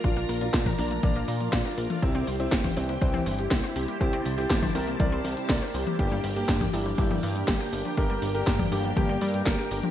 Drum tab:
HH |xxoxxxoxxxoxx-ox|xxoxxxoxxxoxx-ox|xxooxxoxxxoxxxox|xxoxxxoxxxoxx-ox|
CP |----x-------x---|----x-------x---|----x-------x---|----x-------x---|
SD |----o-------o---|----o-------o---|----o-------o---|----o-------o---|
T1 |-----o--o------o|-----o---o------|-----o--o------o|-----o---o------|
BD |o---oo--o---o---|o---oo--o---o---|o---oo--o---o---|o---oo--o---o---|

HH |xxoxxxoxxxoxx-ox|
CP |----x-------x---|
SD |----o-------o---|
T1 |-----o--o------o|
BD |o---oo--o---o---|